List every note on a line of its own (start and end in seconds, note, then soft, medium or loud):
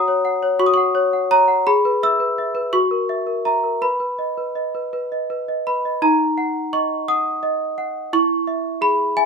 0.00 0.58 F#4 medium
0.00 0.08 C#5 soft
0.00 0.18 F#5 soft
0.00 1.31 A#5 loud
0.00 0.59 D#6 medium
0.08 0.35 C#5 soft
0.25 0.53 F#5 medium
0.43 0.70 C#5 medium
0.59 1.63 F#4 medium
0.59 0.66 C#6 medium
0.66 0.73 D#6 medium
0.74 1.05 F#5 soft
0.74 1.30 C#6 medium
0.95 1.23 C#5 medium
1.13 1.41 F#5 soft
1.31 1.59 C#5 soft
1.31 1.67 A#5 loud
1.48 1.66 F#5 soft
1.67 2.71 G#4 medium
1.67 2.03 B5 loud
1.85 2.14 B4 soft
2.03 2.31 E5 soft
2.03 2.74 E6 medium
2.20 2.49 B4 soft
2.38 2.67 E5 soft
2.55 2.73 B4 soft
2.73 3.79 F#4 medium
2.73 3.45 C#6 medium
2.91 3.20 A#4 soft
3.09 3.38 E5 soft
3.27 3.56 A#4 soft
3.45 3.75 E5 soft
3.45 3.82 A#5 medium
3.64 3.82 A#4 soft
3.81 3.99 B4 soft
3.81 5.66 B5 medium
4.00 4.30 B4 soft
4.19 4.48 D#5 soft
4.38 4.67 B4 soft
4.55 4.85 D#5 soft
4.75 4.92 B4 soft
4.93 5.29 B4 soft
5.12 5.41 D#5 soft
5.30 5.59 B4 soft
5.48 5.77 D#5 soft
5.67 5.95 B4 soft
5.67 6.02 B5 medium
5.85 6.02 D#5 soft
6.02 8.08 D#4 medium
6.02 6.72 A#5 medium
6.38 6.94 F#5 soft
6.73 7.29 D#5 soft
6.73 7.08 C#6 medium
7.08 7.64 F#5 soft
7.08 8.13 D#6 medium
7.43 7.99 D#5 soft
7.78 8.12 F#5 soft
8.13 9.26 E4 medium
8.13 8.82 C#6 medium
8.47 9.03 E5 soft
8.81 9.26 G#4 soft
8.81 9.16 B5 medium
9.17 9.26 E5 soft
9.17 9.26 G#5 medium